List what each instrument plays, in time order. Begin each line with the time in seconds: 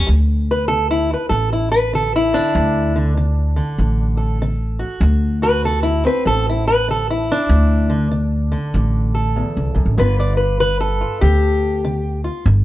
0.07 steel-string acoustic guitar D2, upright bass D2
0.51 steel-string acoustic guitar B4
0.68 steel-string acoustic guitar D3 A4
0.91 steel-string acoustic guitar E4
1.13 steel-string acoustic guitar B4
1.29 upright bass A1, steel-string acoustic guitar A2 A4
1.53 steel-string acoustic guitar E4
1.72 steel-string acoustic guitar B4
1.93 steel-string acoustic guitar D3 A4
2.16 steel-string acoustic guitar E4
2.33 steel-string acoustic guitar D3 D4
2.55 upright bass D2, steel-string acoustic guitar D2
2.96 steel-string acoustic guitar D3
3.17 steel-string acoustic guitar D3
3.56 steel-string acoustic guitar D3
3.78 upright bass A1, steel-string acoustic guitar A2
4.17 steel-string acoustic guitar A4
4.42 steel-string acoustic guitar D3
4.79 steel-string acoustic guitar F#4
5.01 upright bass D2, steel-string acoustic guitar D2
5.42 steel-string acoustic guitar F#4 B4
5.64 steel-string acoustic guitar D3 A4
5.83 steel-string acoustic guitar E4
6.05 steel-string acoustic guitar C4 B4
6.25 upright bass A1, steel-string acoustic guitar A2 A4
6.49 steel-string acoustic guitar E4
6.67 steel-string acoustic guitar B4
6.88 steel-string acoustic guitar D3 A4
7.10 steel-string acoustic guitar E4
7.32 steel-string acoustic guitar D4
7.49 upright bass D2, steel-string acoustic guitar D2
7.90 steel-string acoustic guitar D3
8.11 steel-string acoustic guitar D3
8.52 steel-string acoustic guitar D3
8.74 upright bass A1, steel-string acoustic guitar A2
9.15 steel-string acoustic guitar A4
9.36 steel-string acoustic guitar E2
9.57 upright bass C2
9.75 upright bass B1, steel-string acoustic guitar F#2
9.86 upright bass A1
9.98 upright bass G1, steel-string acoustic guitar G2 D3 B3 F4 B4
10.20 steel-string acoustic guitar D5
10.37 steel-string acoustic guitar B4
10.60 steel-string acoustic guitar D3 B4
10.81 steel-string acoustic guitar A4
11.01 steel-string acoustic guitar F4
11.21 upright bass D2, steel-string acoustic guitar D3 G4
11.85 steel-string acoustic guitar D3
12.24 steel-string acoustic guitar F4
12.46 upright bass G1, steel-string acoustic guitar G2